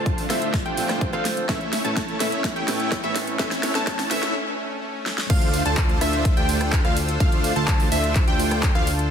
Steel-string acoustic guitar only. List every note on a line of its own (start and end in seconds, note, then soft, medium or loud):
0.29 0.38 F3 loud
0.29 0.38 C4 medium
0.29 0.38 D4 medium
0.29 0.39 A4 loud
0.77 1.10 F3 medium
0.77 1.10 C4 medium
0.77 1.10 D4 medium
0.77 1.11 A4 medium
1.13 1.46 F3 medium
1.13 1.46 C4 medium
1.13 1.46 D4 medium
1.13 1.46 A4 loud
1.48 1.57 A2 medium
1.48 1.57 E3 medium
1.48 1.57 A3 medium
1.48 1.57 C#4 medium
1.48 1.58 A4 medium
1.84 1.93 A2 medium
1.84 1.93 E3 medium
1.84 1.93 A3 medium
1.84 1.93 C#4 medium
1.84 1.93 A4 medium
2.20 2.28 A2 loud
2.20 2.29 E3 medium
2.20 2.29 A3 medium
2.20 2.29 C#4 medium
2.20 2.29 A4 loud
2.67 3.01 A2 medium
2.67 3.01 E3 medium
2.67 3.01 A3 medium
2.67 3.01 C#4 medium
2.67 3.01 A4 loud
3.03 3.36 A2 medium
3.03 3.36 E3 medium
3.03 3.37 A3 medium
3.03 3.37 C#4 medium
3.03 3.37 A4 loud
3.39 3.47 A2 medium
3.39 3.48 E3 medium
3.39 3.48 A3 medium
3.39 3.48 C#4 medium
3.39 3.48 A4 loud
3.74 3.83 A2 medium
3.74 3.83 E3 medium
3.74 3.83 A3 medium
3.74 3.84 C#4 medium
3.74 3.84 A4 medium
4.10 4.19 A2 medium
4.10 4.19 E3 medium
4.10 4.19 A3 medium
4.10 4.19 C#4 medium
4.10 4.19 A4 loud